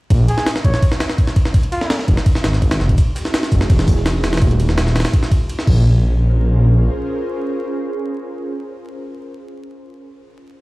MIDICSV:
0, 0, Header, 1, 5, 480
1, 0, Start_track
1, 0, Key_signature, -5, "minor"
1, 0, Tempo, 359281
1, 140, Time_signature, 4, 2, 24, 8
1, 14176, End_track
2, 0, Start_track
2, 0, Title_t, "Muted trumpet"
2, 0, Program_c, 0, 59
2, 379, Note_on_c, 0, 68, 93
2, 669, Note_off_c, 0, 68, 0
2, 860, Note_on_c, 0, 73, 95
2, 1149, Note_off_c, 0, 73, 0
2, 2300, Note_on_c, 0, 65, 93
2, 2663, Note_off_c, 0, 65, 0
2, 14176, End_track
3, 0, Start_track
3, 0, Title_t, "Ambient pad"
3, 0, Program_c, 1, 92
3, 3981, Note_on_c, 1, 61, 97
3, 3982, Note_on_c, 1, 57, 107
3, 3983, Note_on_c, 1, 64, 98
3, 3983, Note_on_c, 1, 66, 98
3, 3983, Note_on_c, 1, 68, 119
3, 5854, Note_off_c, 1, 57, 0
3, 5854, Note_off_c, 1, 61, 0
3, 5855, Note_off_c, 1, 64, 0
3, 5855, Note_off_c, 1, 66, 0
3, 5855, Note_off_c, 1, 68, 0
3, 7579, Note_on_c, 1, 72, 106
3, 7580, Note_on_c, 1, 65, 90
3, 7580, Note_on_c, 1, 68, 89
3, 7580, Note_on_c, 1, 70, 89
3, 7581, Note_on_c, 1, 61, 95
3, 12050, Note_off_c, 1, 68, 0
3, 12050, Note_off_c, 1, 72, 0
3, 12051, Note_off_c, 1, 61, 0
3, 12051, Note_off_c, 1, 65, 0
3, 12051, Note_off_c, 1, 70, 0
3, 14176, End_track
4, 0, Start_track
4, 0, Title_t, "Detuned saw bass"
4, 0, Program_c, 2, 39
4, 139, Note_on_c, 2, 34, 101
4, 357, Note_off_c, 2, 34, 0
4, 861, Note_on_c, 2, 34, 106
4, 971, Note_off_c, 2, 34, 0
4, 2782, Note_on_c, 2, 29, 105
4, 2892, Note_off_c, 2, 29, 0
4, 3259, Note_on_c, 2, 32, 80
4, 3721, Note_off_c, 2, 32, 0
4, 3739, Note_on_c, 2, 29, 95
4, 3957, Note_off_c, 2, 29, 0
4, 4700, Note_on_c, 2, 30, 107
4, 4811, Note_off_c, 2, 30, 0
4, 4941, Note_on_c, 2, 28, 81
4, 5882, Note_off_c, 2, 28, 0
4, 5901, Note_on_c, 2, 27, 83
4, 6602, Note_off_c, 2, 27, 0
4, 6620, Note_on_c, 2, 27, 105
4, 6731, Note_off_c, 2, 27, 0
4, 7580, Note_on_c, 2, 34, 97
4, 9207, Note_off_c, 2, 34, 0
4, 14176, End_track
5, 0, Start_track
5, 0, Title_t, "Drums"
5, 140, Note_on_c, 9, 36, 110
5, 140, Note_on_c, 9, 51, 88
5, 273, Note_off_c, 9, 36, 0
5, 273, Note_off_c, 9, 51, 0
5, 380, Note_on_c, 9, 51, 70
5, 504, Note_on_c, 9, 38, 48
5, 513, Note_off_c, 9, 51, 0
5, 620, Note_off_c, 9, 38, 0
5, 620, Note_on_c, 9, 38, 118
5, 620, Note_on_c, 9, 51, 91
5, 743, Note_off_c, 9, 38, 0
5, 743, Note_on_c, 9, 38, 60
5, 754, Note_off_c, 9, 51, 0
5, 861, Note_on_c, 9, 36, 97
5, 862, Note_on_c, 9, 51, 70
5, 877, Note_off_c, 9, 38, 0
5, 984, Note_on_c, 9, 38, 50
5, 995, Note_off_c, 9, 36, 0
5, 996, Note_off_c, 9, 51, 0
5, 1101, Note_on_c, 9, 36, 117
5, 1101, Note_on_c, 9, 51, 91
5, 1117, Note_off_c, 9, 38, 0
5, 1223, Note_on_c, 9, 38, 51
5, 1235, Note_off_c, 9, 36, 0
5, 1235, Note_off_c, 9, 51, 0
5, 1339, Note_off_c, 9, 38, 0
5, 1339, Note_on_c, 9, 38, 107
5, 1339, Note_on_c, 9, 51, 81
5, 1462, Note_off_c, 9, 38, 0
5, 1462, Note_on_c, 9, 38, 52
5, 1473, Note_off_c, 9, 51, 0
5, 1580, Note_on_c, 9, 36, 86
5, 1580, Note_on_c, 9, 51, 64
5, 1596, Note_off_c, 9, 38, 0
5, 1702, Note_on_c, 9, 38, 44
5, 1713, Note_off_c, 9, 51, 0
5, 1714, Note_off_c, 9, 36, 0
5, 1819, Note_on_c, 9, 51, 81
5, 1820, Note_on_c, 9, 36, 100
5, 1835, Note_off_c, 9, 38, 0
5, 1943, Note_on_c, 9, 38, 44
5, 1953, Note_off_c, 9, 51, 0
5, 1954, Note_off_c, 9, 36, 0
5, 2059, Note_on_c, 9, 51, 89
5, 2061, Note_on_c, 9, 36, 107
5, 2077, Note_off_c, 9, 38, 0
5, 2183, Note_off_c, 9, 51, 0
5, 2183, Note_on_c, 9, 51, 46
5, 2195, Note_off_c, 9, 36, 0
5, 2301, Note_off_c, 9, 51, 0
5, 2301, Note_on_c, 9, 51, 70
5, 2424, Note_on_c, 9, 38, 49
5, 2435, Note_off_c, 9, 51, 0
5, 2540, Note_off_c, 9, 38, 0
5, 2540, Note_on_c, 9, 38, 119
5, 2540, Note_on_c, 9, 51, 94
5, 2664, Note_off_c, 9, 38, 0
5, 2664, Note_on_c, 9, 38, 40
5, 2674, Note_off_c, 9, 51, 0
5, 2780, Note_on_c, 9, 51, 72
5, 2781, Note_on_c, 9, 36, 98
5, 2798, Note_off_c, 9, 38, 0
5, 2904, Note_on_c, 9, 38, 53
5, 2914, Note_off_c, 9, 51, 0
5, 2915, Note_off_c, 9, 36, 0
5, 3020, Note_on_c, 9, 51, 91
5, 3021, Note_on_c, 9, 36, 117
5, 3037, Note_off_c, 9, 38, 0
5, 3144, Note_on_c, 9, 38, 42
5, 3153, Note_off_c, 9, 51, 0
5, 3155, Note_off_c, 9, 36, 0
5, 3259, Note_off_c, 9, 38, 0
5, 3259, Note_on_c, 9, 38, 110
5, 3259, Note_on_c, 9, 51, 84
5, 3383, Note_off_c, 9, 38, 0
5, 3383, Note_on_c, 9, 38, 36
5, 3393, Note_off_c, 9, 51, 0
5, 3499, Note_on_c, 9, 51, 65
5, 3501, Note_on_c, 9, 36, 87
5, 3516, Note_off_c, 9, 38, 0
5, 3622, Note_off_c, 9, 51, 0
5, 3622, Note_on_c, 9, 38, 104
5, 3622, Note_on_c, 9, 51, 78
5, 3634, Note_off_c, 9, 36, 0
5, 3741, Note_off_c, 9, 38, 0
5, 3741, Note_on_c, 9, 38, 36
5, 3756, Note_off_c, 9, 51, 0
5, 3863, Note_on_c, 9, 51, 61
5, 3864, Note_on_c, 9, 36, 85
5, 3874, Note_off_c, 9, 38, 0
5, 3978, Note_on_c, 9, 82, 90
5, 3980, Note_off_c, 9, 51, 0
5, 3980, Note_on_c, 9, 51, 88
5, 3981, Note_off_c, 9, 36, 0
5, 3981, Note_on_c, 9, 36, 111
5, 4112, Note_off_c, 9, 82, 0
5, 4113, Note_off_c, 9, 51, 0
5, 4115, Note_off_c, 9, 36, 0
5, 4212, Note_on_c, 9, 38, 59
5, 4221, Note_on_c, 9, 51, 70
5, 4224, Note_on_c, 9, 82, 72
5, 4345, Note_off_c, 9, 38, 0
5, 4345, Note_on_c, 9, 38, 49
5, 4355, Note_off_c, 9, 51, 0
5, 4358, Note_off_c, 9, 82, 0
5, 4458, Note_off_c, 9, 38, 0
5, 4458, Note_on_c, 9, 38, 116
5, 4462, Note_off_c, 9, 38, 0
5, 4462, Note_on_c, 9, 38, 123
5, 4462, Note_on_c, 9, 51, 90
5, 4464, Note_on_c, 9, 82, 84
5, 4584, Note_off_c, 9, 38, 0
5, 4584, Note_on_c, 9, 38, 59
5, 4595, Note_off_c, 9, 51, 0
5, 4598, Note_off_c, 9, 82, 0
5, 4698, Note_on_c, 9, 82, 72
5, 4701, Note_on_c, 9, 36, 98
5, 4702, Note_on_c, 9, 51, 71
5, 4718, Note_off_c, 9, 38, 0
5, 4823, Note_on_c, 9, 38, 51
5, 4832, Note_off_c, 9, 82, 0
5, 4835, Note_off_c, 9, 36, 0
5, 4835, Note_off_c, 9, 51, 0
5, 4937, Note_on_c, 9, 46, 88
5, 4941, Note_on_c, 9, 36, 113
5, 4942, Note_on_c, 9, 51, 92
5, 4957, Note_off_c, 9, 38, 0
5, 5064, Note_on_c, 9, 38, 52
5, 5070, Note_off_c, 9, 46, 0
5, 5075, Note_off_c, 9, 36, 0
5, 5075, Note_off_c, 9, 51, 0
5, 5175, Note_on_c, 9, 82, 65
5, 5181, Note_on_c, 9, 36, 98
5, 5181, Note_on_c, 9, 46, 82
5, 5198, Note_off_c, 9, 38, 0
5, 5303, Note_on_c, 9, 38, 42
5, 5309, Note_off_c, 9, 82, 0
5, 5314, Note_off_c, 9, 36, 0
5, 5314, Note_off_c, 9, 46, 0
5, 5420, Note_off_c, 9, 38, 0
5, 5420, Note_on_c, 9, 38, 121
5, 5420, Note_on_c, 9, 51, 92
5, 5424, Note_off_c, 9, 38, 0
5, 5424, Note_on_c, 9, 38, 110
5, 5427, Note_on_c, 9, 82, 85
5, 5549, Note_off_c, 9, 38, 0
5, 5549, Note_on_c, 9, 38, 45
5, 5554, Note_off_c, 9, 51, 0
5, 5561, Note_off_c, 9, 82, 0
5, 5660, Note_off_c, 9, 38, 0
5, 5660, Note_on_c, 9, 38, 103
5, 5660, Note_on_c, 9, 51, 80
5, 5663, Note_on_c, 9, 82, 65
5, 5782, Note_off_c, 9, 38, 0
5, 5782, Note_off_c, 9, 51, 0
5, 5782, Note_on_c, 9, 38, 85
5, 5782, Note_on_c, 9, 51, 66
5, 5796, Note_off_c, 9, 82, 0
5, 5842, Note_off_c, 9, 38, 0
5, 5842, Note_off_c, 9, 51, 0
5, 5842, Note_on_c, 9, 38, 88
5, 5842, Note_on_c, 9, 51, 67
5, 5899, Note_off_c, 9, 51, 0
5, 5899, Note_on_c, 9, 51, 90
5, 5900, Note_on_c, 9, 36, 111
5, 5976, Note_off_c, 9, 38, 0
5, 6024, Note_off_c, 9, 51, 0
5, 6024, Note_on_c, 9, 51, 46
5, 6034, Note_off_c, 9, 36, 0
5, 6141, Note_off_c, 9, 51, 0
5, 6141, Note_on_c, 9, 51, 70
5, 6264, Note_on_c, 9, 38, 48
5, 6274, Note_off_c, 9, 51, 0
5, 6381, Note_off_c, 9, 38, 0
5, 6381, Note_on_c, 9, 38, 121
5, 6381, Note_on_c, 9, 51, 91
5, 6505, Note_off_c, 9, 38, 0
5, 6505, Note_on_c, 9, 38, 38
5, 6514, Note_off_c, 9, 51, 0
5, 6622, Note_off_c, 9, 38, 0
5, 6622, Note_on_c, 9, 38, 89
5, 6622, Note_on_c, 9, 51, 70
5, 6682, Note_off_c, 9, 38, 0
5, 6682, Note_off_c, 9, 51, 0
5, 6682, Note_on_c, 9, 38, 94
5, 6682, Note_on_c, 9, 51, 71
5, 6744, Note_off_c, 9, 38, 0
5, 6744, Note_off_c, 9, 51, 0
5, 6744, Note_on_c, 9, 38, 106
5, 6744, Note_on_c, 9, 51, 81
5, 6860, Note_on_c, 9, 36, 117
5, 6861, Note_off_c, 9, 51, 0
5, 6861, Note_on_c, 9, 51, 92
5, 6878, Note_off_c, 9, 38, 0
5, 6984, Note_on_c, 9, 38, 42
5, 6994, Note_off_c, 9, 36, 0
5, 6995, Note_off_c, 9, 51, 0
5, 7101, Note_on_c, 9, 36, 101
5, 7102, Note_on_c, 9, 51, 81
5, 7117, Note_off_c, 9, 38, 0
5, 7235, Note_off_c, 9, 36, 0
5, 7236, Note_off_c, 9, 51, 0
5, 7342, Note_on_c, 9, 51, 64
5, 7465, Note_on_c, 9, 38, 40
5, 7475, Note_off_c, 9, 51, 0
5, 7581, Note_on_c, 9, 36, 117
5, 7582, Note_on_c, 9, 49, 87
5, 7599, Note_off_c, 9, 38, 0
5, 7714, Note_off_c, 9, 36, 0
5, 7716, Note_off_c, 9, 49, 0
5, 14176, End_track
0, 0, End_of_file